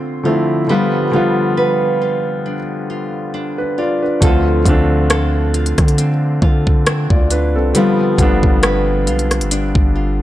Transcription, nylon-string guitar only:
Already playing: D3 C4 F4 A4
0.25 F4
0.69 G3 B4
1.13 F4
1.57 B4
2.02 F4
2.46 D4
2.90 F4
3.34 D4
3.78 F4
4.22 D3 A4
4.66 F4
5.10 A4
5.54 F4
5.98 C4
6.43 F4
6.87 C4
7.31 F4
7.75 G3 B4
8.19 F4
8.63 B4
9.07 F4
9.51 D4
9.95 F4

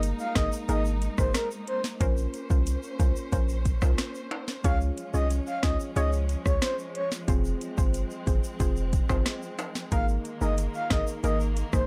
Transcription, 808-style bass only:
Already playing: G1
0.36 G#1
0.69 G#1
1.18 G#1
2.01 A#1
2.50 C2
3.00 C2
3.32 A#1
3.82 C2
4.64 C#2
5.14 C2
5.63 C#2
5.96 C#2
6.46 C#2
7.28 F1
7.78 G1
8.27 G1
8.60 F1
9.10 G1
9.92 G#1
10.41 G1
10.91 G#1
11.24 G#1
11.73 G#1

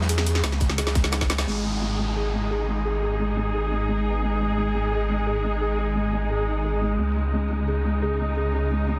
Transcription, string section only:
Already playing: C#3 F#3 D#4
1.47 G#3 D#4 G#4
6.99 C#3 D#4

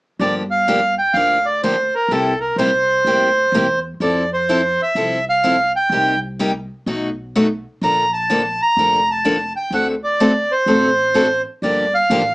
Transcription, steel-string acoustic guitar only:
0.20 D3 F3 A#3 D4 G4
0.68 D3 F3 A#3 D4 G4
1.16 D3 F3 A#3 D4 G4
1.63 D3 F3 A#3 D4 G4
2.11 C3 G3 A#3 E4 G4
2.58 C3 G3 A#3 E4 G4
3.06 C3 G3 A#3 E4 G4
3.54 C3 G3 A#3 E4 G4
4.01 F3 C4 E4 A4
4.49 F3 C4 E4 A4
4.96 F3 C4 E4 A4
5.44 F3 C4 E4 A4
5.92 C3 G3 A#3 D#4 G4
6.39 C3 G3 A#3 D#4 G4
6.87 B2 F#3 A3 D#4 F#4
7.35 B2 F#3 A3 D#4 F#4
7.83 D3 F3 A#3 D4 A4
8.30 D3 F3 A#3 D4 A4
8.78 D3 F3 A#3 D4 A4
9.25 D3 F3 A#3 D4 A4
9.72 D3 A3 C4 F#4 A4
10.20 D3 A3 C4 F#4 A4
10.67 D3 A3 C4 F#4 A4
11.14 D3 A3 C4 F#4 A4
11.63 D3 F3 A#3 D4 G4
12.11 D3 F3 A#3 D4 G4

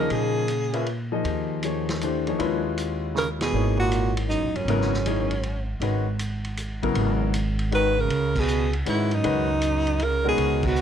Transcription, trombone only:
Already playing: C#3
0.11 C#3
3.15 C#3
3.40 B2
3.77 A#2
4.27 F#2
4.53 F#2
7.73 D#3
7.98 C#3
8.36 B2
8.88 G#2
9.14 F#2
10.02 C#3
10.26 B2
10.65 B2

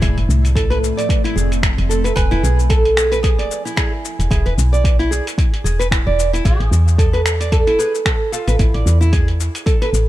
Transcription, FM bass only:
0.02 F1
0.17 F1
0.29 C2
1.36 F1
1.78 F1
2.17 E1
2.32 E1
2.44 B1
3.39 D1
4.19 E1
4.31 E1
4.46 E1
4.58 B1
5.64 E1
6.07 E1
6.45 A1
6.60 A1
6.71 E2
7.67 E1
8.48 A1
8.59 A1
8.74 A1
8.86 E2
9.93 A1

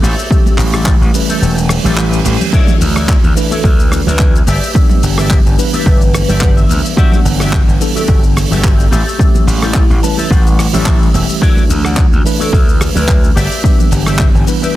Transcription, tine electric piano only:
0.30 E3 G3 A3 C#4 G4
1.13 E3 G3 A3 C#4 B4
1.84 E3 G3 A3 C#4 G4
2.24 E3 G3 A3 C#4 G4
2.52 E3 A3 D4 F#4
3.35 E3 A3 D4 B4
4.74 E3 G3 B3 D4 G4
5.57 E3 G3 B3 D4 B4
6.96 E3 G3 B3 D4 F#5
7.80 E3 G3 B3 D4 A4
9.19 E3 G3 A3 C#4 G4
10.02 E3 G3 A3 C#4 B4
10.73 E3 G3 A3 C#4 G4
11.14 E3 G3 A3 C#4 G4
11.41 E3 A3 D4 F#4
12.24 E3 A3 D4 B4
13.63 E3 G3 B3 D4 G4
14.46 E3 G3 B3 D4 B4

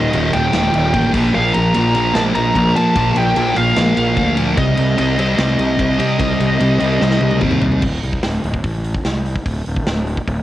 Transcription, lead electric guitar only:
Already playing: D#5
0.33 G5
1.35 F5
1.53 A#5
1.94 A#5
2.15 A5
2.35 A#5
2.76 A5
3.17 G5
3.57 F5
4.58 D#5
4.99 D#5
5.20 D#5

